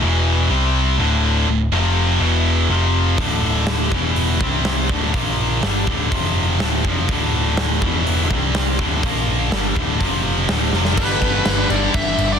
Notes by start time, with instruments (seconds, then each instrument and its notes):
0.01 picked electric bass E1, overdriven electric guitar E2 B2 E3
0.50 picked electric bass C2, overdriven electric guitar C3 G3 C4
0.99 picked electric bass D1, overdriven electric guitar D2 A2 D3
1.48 picked electric bass D1, overdriven electric guitar D2 A2
1.72 picked electric bass F1, overdriven electric guitar F2 C3 F3
2.21 picked electric bass E1, overdriven electric guitar E2 B2 E3
2.69 picked electric bass F1, overdriven electric guitar F2 C3 F3
3.18 picked electric bass D1, overdriven electric guitar D2 A2 D3, kick, open hi-hat
3.67 snare, open hi-hat
3.92 picked electric bass E1, overdriven electric guitar E2 B2 E3, kick
4.16 open hi-hat
4.40 picked electric bass C2, overdriven electric guitar C3 G3 C4, kick
4.65 snare, open hi-hat
4.89 picked electric bass D1, overdriven electric guitar D2 A2 D3, kick, snare
5.14 picked electric bass A#1, overdriven electric guitar A#2 F3 A#3, kick, open hi-hat
5.63 picked electric bass G1, overdriven electric guitar G2 D3 G3, snare, open hi-hat
5.86 picked electric bass D1, overdriven electric guitar D2 A2 D3, kick
6.12 picked electric bass F1, overdriven electric guitar F2 C3 F3, kick, open hi-hat
6.59 picked electric bass D1, overdriven electric guitar D2 A2 D3, snare, open hi-hat
6.83 picked electric bass F1, overdriven electric guitar F2 C3, distorted electric guitar F3, kick
6.87 overdriven electric guitar F3
7.09 picked electric bass D1, overdriven electric guitar D2 A2 D3, kick, open hi-hat
7.57 snare, open hi-hat
7.82 picked electric bass E1, overdriven electric guitar E2 B2 E3, kick
8.07 open hi-hat
8.30 picked electric bass C2, overdriven electric guitar C3 G3 C4, kick
8.55 snare, open hi-hat
8.79 picked electric bass D1, overdriven electric guitar D2 A2 D3, kick, snare
9.03 picked electric bass A#1, overdriven electric guitar A#2 F3 A#3, kick, open hi-hat
9.51 picked electric bass G1, overdriven electric guitar G2 D3 G3, snare, open hi-hat
9.76 picked electric bass D1, overdriven electric guitar D2 A2 D3, kick
10.01 picked electric bass F1, overdriven electric guitar F2 C3 F3, kick, open hi-hat
10.49 picked electric bass D1, overdriven electric guitar D2 A2 D3, snare, open hi-hat
10.73 picked electric bass F1, overdriven electric guitar F2 C3 F3, snare
10.85 snare
10.97 picked electric bass G1, overdriven electric guitar G2 D3 G3, lead electric guitar B4, kick, crash
11.22 picked electric bass G1, kick, crash
11.46 picked electric bass G1, snare, crash
11.70 picked electric bass G1, lead electric guitar D5, crash
11.94 picked electric bass G1, lead electric guitar E5, kick, crash
12.18 picked electric bass G1, crash
12.32 lead electric guitar D5